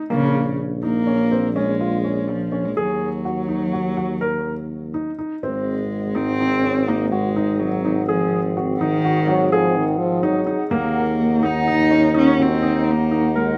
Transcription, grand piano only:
0.10 0.41 A#3 medium
0.83 0.98 D#4 medium
1.07 1.22 C#4 medium
1.31 1.47 C4 medium
1.56 1.71 C#4 medium
1.81 1.96 F4 medium
2.04 2.34 C#4 medium
2.52 2.67 C#4 medium
2.77 3.07 G#4 medium
3.25 3.40 F#4 medium
3.49 3.64 D#4 medium
3.73 3.88 F#4 medium
3.97 4.12 F#4 medium
4.21 4.52 A#4 medium
4.94 5.10 D#4 medium
5.19 5.34 D#4 medium
5.43 5.74 C4 medium
6.15 6.30 D#4 medium
6.40 6.55 D#4 medium
6.64 6.79 C#4 medium
6.88 7.03 D#4 medium
7.12 7.27 F#4 medium
7.36 7.67 D#4 medium
7.85 8.00 D#4 medium
8.09 8.39 G#4 medium
8.57 8.72 F#4 medium
8.81 8.96 D#4 medium
9.05 9.19 F#4 medium
9.28 9.43 F#4 medium
9.52 9.82 G#4 medium
10.23 10.38 D#4 medium
10.47 10.62 D#4 medium
10.71 11.01 A#3 medium
11.43 11.58 D#4 medium
11.68 11.82 D#4 medium
11.91 12.06 C#4 medium
12.14 12.29 D#4 medium
12.39 12.54 F#4 medium
12.63 12.93 D#4 medium
13.11 13.26 D#4 medium
13.36 13.58 A#4 medium

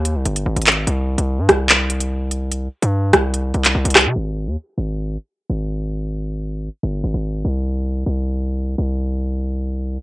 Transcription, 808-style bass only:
0.00 0.17 D#2 loud
0.15 0.25 C2 loud
0.26 0.45 G1 loud
0.46 0.56 G#1 loud
0.56 0.86 G#1 loud
0.87 1.17 C2 loud
1.18 1.40 C2 loud
1.39 1.48 G2 loud
1.49 2.68 C2 loud
2.82 3.12 G2 loud
3.13 3.53 C2 loud
3.54 3.74 C2 loud
3.75 3.85 C2 loud
3.85 4.07 C2 loud
4.06 4.15 C3 loud
4.16 4.48 G#1 loud
4.47 4.57 D#2 loud
4.78 5.17 G#1 loud
5.50 6.69 G#1 loud
6.83 7.03 G1 loud
7.04 7.14 G#1 loud
7.14 7.44 G#1 loud
7.45 8.04 C2 loud
8.06 8.75 C2 loud
8.78 9.98 C2 loud

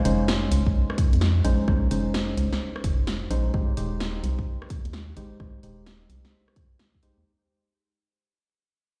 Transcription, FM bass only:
0.05 0.48 F1 medium
0.51 0.63 C#2 medium
1.13 1.41 F2 medium
1.44 1.56 A#1 medium
1.68 1.87 A#1 loud
1.91 2.34 F1 medium
2.37 2.49 C#2 medium
2.84 3.27 F1 medium
3.30 3.50 A#1 medium
3.54 3.73 G#1 loud
3.77 4.20 D#1 medium
4.24 4.35 C2 medium
4.85 5.14 D#2 medium
5.17 5.28 G#1 medium
5.40 5.59 G#1 medium
5.63 6.07 D#1 medium
6.10 6.21 C2 medium
7.18 7.24 D#2 medium

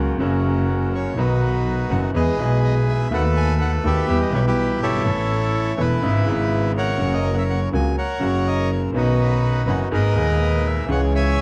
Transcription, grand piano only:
0.00 0.16 C#2 medium
0.00 0.16 C#3 medium
0.00 0.16 F#3 medium
0.00 0.17 A#3 medium
0.00 0.17 F#4 medium
0.18 1.12 F#2 medium
0.18 1.11 C#3 medium
0.18 1.12 F#3 medium
0.18 1.13 A#3 medium
0.22 1.13 F#4 medium
1.16 1.87 B1 medium
1.16 1.87 B2 medium
1.16 1.86 D#3 medium
1.16 1.86 F#3 medium
1.16 1.87 B3 medium
1.16 1.88 F#4 medium
1.90 2.10 F#1 medium
1.90 2.11 F#2 medium
1.90 2.10 D#3 medium
1.90 2.10 F#3 soft
1.90 2.11 B3 medium
1.90 2.11 F#4 medium
2.14 2.35 E2 medium
2.14 2.35 E3 medium
2.14 2.35 G#3 medium
2.14 2.35 B3 medium
2.14 2.35 G#4 medium
2.37 3.08 B1 medium
2.37 3.08 B2 medium
2.37 3.07 E3 medium
2.37 3.08 G#3 medium
2.37 3.08 B3 medium
2.41 3.09 G#4 medium
3.10 3.81 D#2 medium
3.10 3.11 D#3 medium
3.10 3.81 D#3 medium
3.10 3.80 A3 medium
3.10 3.81 B3 medium
3.14 3.82 F#4 medium
3.84 4.05 D#2 medium
3.84 4.05 D#3 medium
3.84 4.05 A3 medium
3.84 4.05 B3 medium
3.84 4.05 F#4 medium
4.08 4.29 E2 medium
4.08 4.29 E3 medium
4.08 4.29 G3 medium
4.08 4.29 B3 medium
4.08 4.29 G4 medium
4.31 5.02 B1 medium
4.31 5.02 B2 medium
4.31 5.01 E3 medium
4.31 5.01 G3 medium
4.31 5.02 B3 medium
4.31 5.03 G4 medium
4.88 4.93 F#1 soft
4.94 5.00 G1 medium
5.00 5.06 G#1 medium
5.04 5.75 A1 medium
5.04 5.75 A2 medium
5.04 5.74 E3 medium
5.04 5.74 A3 medium
5.04 5.75 B3 medium
5.08 5.76 A4 medium
5.77 5.98 E1 medium
5.77 5.98 E2 medium
5.77 5.98 E3 medium
5.77 5.98 A3 medium
5.77 5.98 B3 medium
5.77 5.98 A4 medium
6.02 6.23 G#1 medium
6.02 6.23 G#2 medium
6.02 6.23 C#3 medium
6.02 6.23 G#3 medium
6.02 6.23 B3 medium
6.02 6.23 E4 medium
6.25 6.96 G#1 medium
6.25 6.96 G#2 medium
6.25 6.95 C#3 medium
6.25 6.96 G#3 medium
6.25 6.96 B3 medium
6.29 6.97 E4 medium
6.98 7.69 F#2 medium
6.98 7.68 C#3 medium
6.98 7.69 F#3 medium
6.98 7.69 A#3 medium
6.98 7.70 F#4 medium
7.73 7.93 C#2 medium
7.73 7.93 C#3 medium
7.73 7.93 F#3 medium
7.73 7.93 A#3 medium
7.73 7.93 F#4 medium
8.20 8.91 F#2 medium
8.20 8.90 C#3 medium
8.20 8.91 F#3 medium
8.20 8.91 A#3 medium
8.20 8.92 F#4 medium
8.92 9.64 B1 medium
8.92 9.63 B2 medium
8.92 9.63 D#3 medium
8.92 9.63 B3 medium
8.92 9.64 C#4 medium
8.92 9.64 F#4 medium
9.67 9.87 F#1 medium
9.67 9.87 F#2 medium
9.67 9.87 D#3 medium
9.67 9.87 B3 soft
9.67 9.88 C#4 medium
9.67 9.87 F#4 medium
9.91 10.12 G#1 medium
9.91 10.12 G#2 medium
9.91 10.12 D#3 medium
9.91 10.12 A#3 medium
9.91 10.12 B3 medium
9.91 10.12 G#4 medium
10.14 10.85 D#1 medium
10.14 10.85 D#2 medium
10.14 10.84 D#3 medium
10.14 10.84 G#3 medium
10.14 10.85 B3 medium
10.18 10.86 G#4 medium
10.86 11.41 C#2 medium
10.86 11.41 C#3 medium
10.86 11.41 E3 medium
10.86 11.41 G#3 medium
10.86 11.41 C#4 medium
10.90 11.41 G#4 medium

